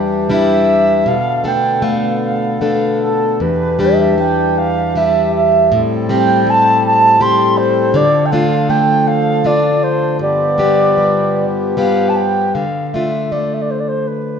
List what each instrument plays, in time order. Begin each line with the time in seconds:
Already playing: steel-string acoustic guitar E2 G3 D4, harmonium E3 D4 G4
0.30 steel-string acoustic guitar G3 D4 E4, flute E5
1.06 steel-string acoustic guitar B2, harmonium D3 B3 A4, flute F5
1.44 steel-string acoustic guitar A3 D4 A4, flute G5
1.82 steel-string acoustic guitar A3, flute F5
2.23 flute F5
2.61 steel-string acoustic guitar A3 D4 A4, flute F5
3.02 flute A4
3.40 steel-string acoustic guitar E2, harmonium E3 D4 G4, flute B4
3.79 steel-string acoustic guitar G3 D4 G4, flute E5
4.18 steel-string acoustic guitar G3, flute G5
4.58 flute F5
4.95 steel-string acoustic guitar G3 D4 G4, flute E5
5.35 flute E5
5.72 steel-string acoustic guitar A2, harmonium G3 C4 A4
6.09 steel-string acoustic guitar G3 C4 G4, flute G5
6.47 steel-string acoustic guitar G3, flute A5
6.86 flute A5
7.20 steel-string acoustic guitar G3 C4 G4, flute C6
7.57 flute C5
7.92 steel-string acoustic guitar D3, harmonium F3 D4 A4, flute D5
8.25 flute G5
8.31 steel-string acoustic guitar A3 D4 F4, flute F5
8.69 steel-string acoustic guitar A3, flute G5
9.07 flute F5
9.44 steel-string acoustic guitar A3 D4 F4, flute D5
9.83 flute C5
10.19 steel-string acoustic guitar G2, harmonium B3 G4, flute D5
10.58 steel-string acoustic guitar G3 B3 G4
10.98 steel-string acoustic guitar G3
11.77 steel-string acoustic guitar G3 B3 G4, flute F5
12.09 flute A5
12.16 flute G5
12.54 steel-string acoustic guitar D3, flute F5
12.86 flute F5
12.93 steel-string acoustic guitar A3 D4 F4, flute E5
13.31 steel-string acoustic guitar A3, flute D5
13.53 flute E5
13.61 flute D5
13.70 flute C5
13.79 flute D5
13.88 flute C5
14.07 flute B4